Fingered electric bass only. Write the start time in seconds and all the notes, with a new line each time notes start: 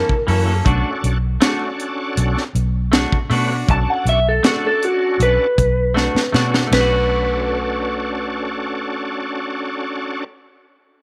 0.09 muted fingered electric bass stroke
0.28 F#2
0.66 B1
1.04 B1
2.17 B1
2.55 B1
3.12 muted fingered electric bass stroke
3.30 B2
3.69 B1
4.05 B1
5.20 B1
5.58 B1
6.15 muted fingered electric bass stroke
6.34 B2
6.71 B1